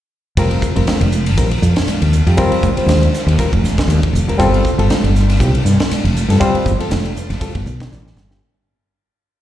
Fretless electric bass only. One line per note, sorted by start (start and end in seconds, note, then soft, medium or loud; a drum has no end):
0.37 0.56 F1 medium
0.77 0.85 F1 medium
1.00 1.38 F1 medium
1.38 1.57 A#1 medium
1.62 1.73 F2 medium
1.88 muted fretless electric bass stroke soft
2.02 2.21 D#2 medium
2.26 2.35 F2 medium
2.52 muted fretless electric bass stroke soft
2.63 2.74 F1 medium
2.77 muted fretless electric bass stroke soft
2.86 3.06 D#2 medium
3.27 3.35 D#2 loud
3.53 3.72 F1 medium
3.78 muted fretless electric bass stroke soft
3.88 3.99 D#2 medium
4.13 4.24 F1 medium
4.40 4.59 G1 medium
4.78 4.87 G1 medium
5.04 5.42 G1 medium
5.40 5.59 C2 medium
5.65 5.76 G2 medium
5.90 muted fretless electric bass stroke soft
6.04 6.24 F1 medium
6.29 6.37 G2 medium
6.54 muted fretless electric bass stroke soft
6.66 6.76 G1 medium
6.80 muted fretless electric bass stroke soft
6.92 7.11 F1 medium
7.30 7.38 F1 medium
7.55 7.64 G1 medium
7.66 7.89 B1 medium
7.92 8.14 A1 medium
8.16 8.39 G1 medium